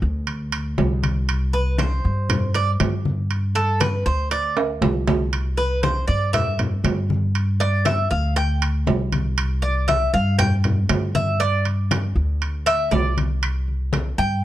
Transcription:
0.02 upright bass D2
0.27 high conga, high timbale
0.52 high conga, high timbale
0.78 upright bass C2, high conga, low timbale
1.03 high conga, high timbale
1.28 high conga, high timbale
1.53 cuban tres B4, high conga
1.78 cuban tres C5, high conga, high timbale, low timbale
2.04 upright bass G2, high conga
2.29 high conga, low conga, high timbale
2.54 cuban tres D5, high conga, high timbale
2.80 upright bass G2, high conga, high timbale, low timbale
3.05 high conga
3.30 high conga, high timbale
3.55 cuban tres A4, high conga, high timbale
3.80 cuban tres B4, high conga, high timbale, low timbale
4.06 upright bass D2, cuban tres C5
4.31 cuban tres D5, high conga, high timbale
4.57 high conga, high timbale
4.81 upright bass C2, high conga, low timbale
5.08 high conga, low timbale
5.33 high conga, high timbale
5.57 cuban tres B4, high conga
5.83 cuban tres C5, high conga, high timbale, low timbale
6.07 upright bass G2, cuban tres D5, high conga
6.33 cuban tres E5, high conga, low conga, high timbale
6.59 high conga, low conga, high timbale
6.84 upright bass G2, high conga, high timbale, low timbale
7.10 high conga
7.35 high conga, high timbale
7.60 cuban tres D5, high conga, high timbale
7.85 cuban tres E5, high conga, high timbale, low timbale
8.11 upright bass D2, cuban tres F5
8.36 cuban tres G5, high conga, high timbale
8.62 high conga, high timbale
8.87 upright bass C2, high conga, low timbale
9.12 high conga, high timbale
9.38 high conga, high timbale
9.62 cuban tres D5, high conga
9.88 cuban tres E5, high conga, high timbale, low timbale
10.13 upright bass G2, cuban tres F5, high conga
10.39 cuban tres G5, high conga, low conga, high timbale
10.64 high conga, low conga, high timbale
10.89 upright bass G2, high conga, high timbale, low timbale
11.15 cuban tres E5, high conga
11.40 cuban tres D5, high conga, high timbale
11.65 high conga, high timbale
11.91 high conga, high timbale, low timbale
12.16 upright bass D2
12.42 high conga, high timbale
12.66 cuban tres E5, high conga, high timbale
12.91 upright bass C2, cuban tres D5, high conga, low timbale
13.17 high conga, high timbale
13.43 high conga, high timbale, claves
13.68 high conga
13.93 high conga, high timbale, low timbale
14.18 upright bass G2, cuban tres G5, high conga

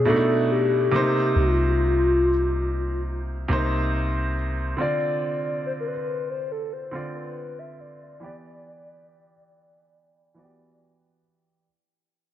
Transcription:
Already playing: 808-style bass B2, soft synth lead G#4
0.05 grand piano B2 A3 D4, soft synth lead A4
0.10 grand piano D#4
0.16 grand piano E4
0.51 soft synth lead G4
0.91 grand piano C3 A#3 D#4
0.96 grand piano C5
1.36 808-style bass C2, soft synth lead F4
3.48 808-style bass C2, grand piano C3 A#3 D#4
3.53 grand piano C5
4.77 grand piano D3 C4 F4, soft synth lead D5
4.81 grand piano D5
5.66 soft synth lead C5
5.80 soft synth lead A#4
5.87 soft synth lead B4
6.30 soft synth lead C5
6.51 soft synth lead A4
6.73 soft synth lead C5
6.91 grand piano D3 C4 F4
6.96 grand piano D5
7.16 soft synth lead B4
7.59 soft synth lead E5
7.80 soft synth lead D5
8.20 grand piano E3 B3 G4
8.24 grand piano D5
10.34 grand piano E3 B3 F#4
10.39 grand piano D5
10.44 grand piano G4

